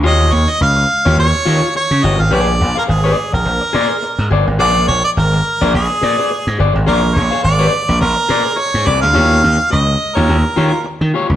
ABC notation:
X:1
M:4/4
L:1/16
Q:"Swing 16ths" 1/4=106
K:Eb
V:1 name="Harmonica"
e2 _d e f4 d4 d2 e f | d3 B A3 B6- B z2 | d2 _d =d B4 A6 z2 | B2 _d2 =d4 B4 _d2 =d f- |
f4 e3 B4- B z4 |]
V:2 name="Clean electric guitar"
[FG_d]2 z4 z [FGd] z2 [FGd] z3 [FGd] z | [Acd] z2 [Acf] z [Acd] z4 [Acd] z3 [Acd] z | [Acd]2 z4 z [Acd] z2 [Acd] [Acd] z2 [Acd] z | [Acd] z2 [Acf] z [Acd] z4 [Acd] z3 [Acd] z |
[FG_d]2 z4 z [FGd] z2 [FGd] z3 [FGd] z |]
V:3 name="Slap bass" clef=bass
E,,2 E,, z _D,,2 z E,, E,, z E, z2 _D, G,,, A,,, | B,,,2 B,,, z A,,,2 z B,,, B,,, z B,, z2 A,, G,,, A,,, | B,,,2 B,,, z A,,,2 z B,,, B,,, z B,, z2 A,, G,,, A,,, | B,,,2 B,,, z A,,,2 z B,,, B,,, z B,, z2 A,, C,, D,, |
E,,2 E,, z _D,,2 z E,, E,, z E, z2 E, z D,, |]